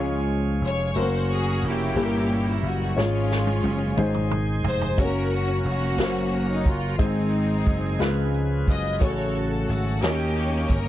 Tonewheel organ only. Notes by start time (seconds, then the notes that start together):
Already playing: F3 G#3 C#4 G#4
0.95 C#3 A#3 C#4 A#4
1.96 E3 A#3 C#4 F#4
2.03 G3
2.97 E3 G#3 C#4 G#4
3.04 F3
3.99 D#3 G#3 G#4 C5
4.99 F#3 A#3 C#4 A#4
6.99 D#3 G#3 C4 G#4
8.00 C#3 F3 F#4 B4
8.06 G#4
9.00 F#3 A3 C#4 A4
10.01 D#3 A#3 C#4 G4